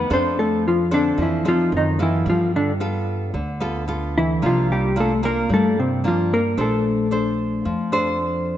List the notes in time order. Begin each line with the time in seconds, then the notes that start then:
Already playing: B3 B4
0.10 F2 F3 C4 D4 A4 C5
0.39 A3 A4
0.68 F3 F4
0.91 D3 C4 D4 A4
1.18 F2 F3
1.22 E3 E4
1.45 F3 C4 D#4 F4 A4
1.72 F#2
1.77 D#3 D#4
1.99 E3 B3 E4 F4 A4
2.26 G2 G3 F4
2.30 F3
2.56 D3 D4
2.80 B3 F4 A4
3.34 D2 D3
3.60 B3 F4 A4
3.88 B3 F4 A4
4.18 E3 E4
4.42 C2 C3 A#3 D4 F4
4.46 F3 F4
4.72 G3 G4
4.96 A#3 D4 F4
5.00 A3 A4
5.23 A#3 D4 F4 A#4
5.49 G2 G3
5.54 A3 A4
5.79 C3 C4
6.04 F3 A#3 D4 F4
6.33 A#3 A#4
6.57 A#1 D4 A4 C5
6.62 A3
7.11 D4 A4 C5
7.65 F2 F3
7.92 D4 A4 C5